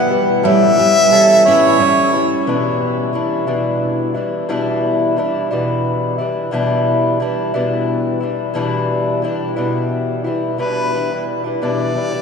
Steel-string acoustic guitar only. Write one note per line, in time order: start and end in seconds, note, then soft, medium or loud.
0.00 0.44 G3 medium
0.00 0.51 B3 medium
0.00 0.52 E4 medium
0.45 0.78 G3 medium
0.79 1.46 G3 medium
1.47 2.54 G3 medium
1.47 1.79 C#4 medium
1.47 2.55 E4 medium
1.80 2.54 C#4 medium